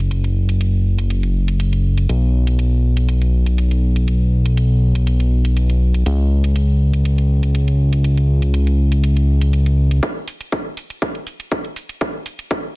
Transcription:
0.00 2.07 F#1 medium
0.11 closed hi-hat medium
0.24 closed hi-hat soft
0.49 closed hi-hat soft
0.61 closed hi-hat medium
0.99 closed hi-hat soft
1.10 closed hi-hat medium
1.23 closed hi-hat soft
1.48 closed hi-hat soft
1.60 closed hi-hat medium
1.73 closed hi-hat soft
1.98 closed hi-hat soft
2.09 6.04 B1 medium
2.09 closed hi-hat medium
2.47 closed hi-hat soft
2.59 closed hi-hat medium
2.97 closed hi-hat soft
3.09 closed hi-hat medium
3.22 closed hi-hat soft
3.46 closed hi-hat soft
3.58 closed hi-hat medium
3.71 closed hi-hat soft
3.96 closed hi-hat soft
4.08 closed hi-hat medium
4.46 closed hi-hat medium
4.57 closed hi-hat medium
4.95 closed hi-hat medium
5.07 closed hi-hat medium
5.20 closed hi-hat soft
5.45 closed hi-hat soft
5.57 closed hi-hat medium
5.70 closed hi-hat soft
5.94 closed hi-hat soft
6.06 10.01 C#2 medium
6.06 closed hi-hat medium
6.44 closed hi-hat medium
6.56 closed hi-hat medium
6.94 closed hi-hat medium
7.05 closed hi-hat medium
7.18 closed hi-hat soft
7.43 closed hi-hat medium
7.55 closed hi-hat medium
7.68 closed hi-hat soft
7.93 closed hi-hat medium
8.04 closed hi-hat medium
8.17 closed hi-hat soft
8.42 closed hi-hat medium
8.54 closed hi-hat medium
8.67 closed hi-hat soft
8.92 closed hi-hat medium
9.04 closed hi-hat medium
9.17 closed hi-hat soft
9.41 closed hi-hat medium
9.53 closed hi-hat medium
9.66 closed hi-hat soft
9.91 closed hi-hat medium
10.03 kick loud
10.03 closed hi-hat medium
10.28 open hi-hat loud
10.41 closed hi-hat medium
10.52 kick loud
10.52 closed hi-hat medium
10.77 open hi-hat medium
10.90 closed hi-hat medium
11.02 kick loud
11.02 closed hi-hat medium
11.15 closed hi-hat soft
11.27 open hi-hat loud
11.40 closed hi-hat medium
11.52 kick loud
11.52 closed hi-hat medium
11.65 closed hi-hat soft
11.76 open hi-hat medium
11.89 closed hi-hat medium
12.01 kick loud
12.01 closed hi-hat medium
12.26 open hi-hat loud
12.39 closed hi-hat medium
12.51 kick loud
12.51 closed hi-hat medium

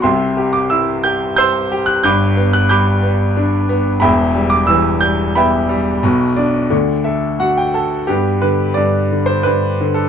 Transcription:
0.02 1.99 C2 medium
0.02 1.99 C3 medium
0.02 1.01 E5 medium
0.02 1.01 G5 medium
0.02 0.50 C6 medium
0.37 1.03 G4 soft
0.53 0.71 D6 medium
0.70 1.99 E4 soft
0.70 1.05 E6 medium
1.04 1.70 G4 soft
1.04 1.35 G6 medium
1.36 2.02 C5 medium
1.36 2.00 C6 medium
1.36 1.99 E6 medium
1.36 1.83 G6 loud
1.72 2.03 G4 medium
1.86 2.03 F#6 medium
2.04 3.98 G1 medium
2.04 3.98 G2 medium
2.04 2.69 B5 medium
2.04 2.69 D6 medium
2.04 2.54 G6 medium
2.37 3.01 B3 medium
2.53 2.70 F#6 medium
2.69 3.98 G3 medium
2.69 3.65 B5 medium
2.69 3.65 D6 medium
2.69 3.65 G6 medium
3.03 3.68 B3 soft
3.37 4.00 D4 medium
3.69 4.01 B3 medium
4.00 5.99 E1 medium
4.00 5.98 E2 medium
4.00 4.98 E5 medium
4.00 4.97 G5 medium
4.00 4.52 B5 medium
4.35 5.00 G3 soft
4.50 4.68 D6 medium
4.67 5.99 E3 medium
4.67 5.02 E6 loud
5.01 5.68 G3 soft
5.01 5.36 G6 medium
5.35 6.01 B3 medium
5.35 7.03 E5 medium
5.35 7.37 G5 medium
5.35 7.36 B5 medium
5.69 6.02 G3 medium
6.03 6.67 B1 medium
6.03 6.69 B2 medium
6.36 6.69 D4 soft
6.36 7.01 D5 medium
6.70 8.05 D2 soft
6.70 8.05 D3 medium
7.04 7.73 A4 soft
7.04 7.37 E5 medium
7.40 8.07 F#4 soft
7.40 7.56 F#5 medium
7.57 7.74 G5 medium
7.74 8.08 A4 medium
7.74 8.07 A5 medium
8.07 8.76 G2 medium
8.07 9.08 B3 soft
8.07 8.40 G4 medium
8.42 9.10 D3 soft
8.42 8.78 B4 medium
8.74 9.45 G2 soft
8.74 9.29 D5 medium
9.12 9.79 D3 soft
9.26 9.46 C5 medium
9.43 10.09 G2 soft
9.43 9.98 B4 medium
9.81 10.09 D3 soft
9.94 10.09 A4 medium

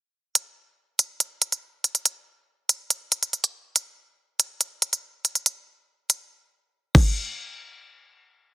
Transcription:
0.35 closed hi-hat medium
0.99 closed hi-hat medium
1.20 closed hi-hat medium
1.42 closed hi-hat medium
1.52 closed hi-hat medium
1.84 closed hi-hat medium
1.95 closed hi-hat medium
2.05 closed hi-hat medium
2.69 closed hi-hat medium
2.90 closed hi-hat medium
3.12 closed hi-hat medium
3.23 closed hi-hat medium
3.33 closed hi-hat soft
3.44 closed hi-hat medium
3.76 closed hi-hat medium
4.40 closed hi-hat medium
4.61 closed hi-hat medium
4.82 closed hi-hat medium
4.93 closed hi-hat medium
5.25 closed hi-hat medium
5.35 closed hi-hat medium
5.46 closed hi-hat medium
6.10 closed hi-hat medium
6.95 kick loud
6.95 crash medium

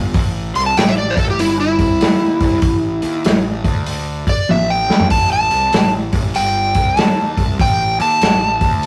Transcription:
0.00 0.13 G1 medium
0.14 0.52 A1 medium
0.14 kick loud
0.14 open hi-hat medium
0.55 0.75 C2 medium
0.55 0.66 C6 medium
0.55 open hi-hat medium
0.66 0.75 A5 medium
0.77 1.14 A1 medium
0.77 0.90 G5 medium
0.77 snare loud
0.77 open hi-hat medium
0.89 0.96 E5 medium
0.98 1.17 D5 medium
1.10 1.15 C5 medium
1.17 1.37 A1 loud
1.17 1.30 A4 medium
1.17 kick medium
1.17 open hi-hat medium
1.30 1.38 G4 medium
1.39 1.76 G1 medium
1.39 1.59 E4 medium
1.39 open hi-hat medium
1.60 3.42 E4 loud
1.79 1.99 C2 medium
1.79 kick medium
1.79 open hi-hat medium
2.01 2.38 D#2 medium
2.01 snare loud
2.01 open hi-hat medium
2.40 2.61 C2 medium
2.40 kick medium
2.40 open hi-hat medium
2.62 3.00 A1 medium
2.62 kick loud
2.62 open hi-hat medium
3.02 3.23 D#2 medium
3.02 open hi-hat soft
3.24 3.62 A1 medium
3.24 snare loud
3.24 open hi-hat medium
3.64 4.23 D2 loud
3.64 kick medium
3.64 open hi-hat medium
3.86 open hi-hat medium
4.27 4.49 D5 medium
4.27 muted picked electric bass stroke soft
4.27 kick medium
4.27 open hi-hat medium
4.49 4.86 A1 medium
4.49 4.70 E5 loud
4.49 high tom medium
4.70 5.10 G5 medium
4.89 5.10 D#2 medium
4.89 snare medium
5.00 floor tom medium
5.10 5.48 A1 medium
5.10 5.31 A5 loud
5.10 kick loud
5.10 open hi-hat medium
5.33 5.92 A5 medium
5.51 5.72 C2 medium
5.51 open hi-hat soft
5.73 6.10 A1 medium
5.73 snare loud
5.73 open hi-hat medium
6.13 6.33 A1 loud
6.13 kick medium
6.13 open hi-hat medium
6.35 6.72 G1 loud
6.35 6.99 G5 loud
6.35 open hi-hat medium
6.75 6.96 C2 medium
6.75 kick medium
6.75 open hi-hat medium
6.97 7.34 D#2 medium
6.97 7.58 A5 medium
6.97 snare loud
6.97 open hi-hat medium
7.37 7.58 C2 medium
7.37 kick medium
7.37 open hi-hat medium
7.59 7.97 A1 medium
7.59 7.99 G5 loud
7.59 kick loud
7.59 open hi-hat medium
8.00 8.20 D#2 medium
8.00 8.86 A5 loud
8.00 open hi-hat soft
8.22 8.59 A1 medium
8.22 snare loud
8.22 open hi-hat medium
8.61 8.86 D2 loud
8.61 kick medium
8.61 open hi-hat medium
8.83 open hi-hat medium

